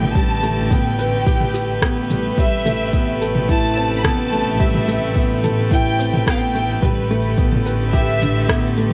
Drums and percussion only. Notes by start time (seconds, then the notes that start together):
0.02 mid tom
0.15 kick, shaker
0.43 shaker
0.71 kick, mid tom, shaker
0.99 shaker
1.26 kick, shaker
1.40 mid tom
1.54 shaker
1.82 kick, cross-stick, shaker
2.10 mid tom, shaker
2.38 kick, shaker
2.66 mid tom, shaker
2.93 kick, shaker
3.21 shaker
3.35 mid tom
3.49 kick, shaker
3.77 shaker
4.04 kick, cross-stick, mid tom, shaker
4.32 shaker
4.60 kick, shaker
4.74 mid tom
4.88 shaker
5.16 kick, shaker
5.44 mid tom, shaker
5.71 kick, shaker
6.00 shaker
6.14 mid tom
6.27 kick, cross-stick, shaker
6.55 shaker
6.82 kick, mid tom, shaker
7.11 shaker
7.38 kick, shaker
7.52 mid tom
7.66 shaker
7.94 kick, shaker
8.22 mid tom, shaker
8.49 kick, cross-stick, shaker
8.77 shaker